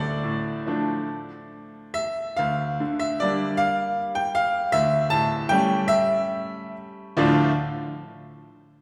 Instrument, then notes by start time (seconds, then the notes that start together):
grand piano
Already playing: D2 A4 D5
0.23 A2
0.67 F3 A3 D4
1.94 E5
2.37 D2 F5
2.80 D3
2.99 E5
3.20 G3 A#3 D4 D5
3.57 F5
4.15 G5
4.35 F5
4.72 D2 E5
5.10 A2 A5
5.49 G3 A3 C#4 G5
5.88 E5
7.17 D2 A2 F3 A3 D4 F4 D5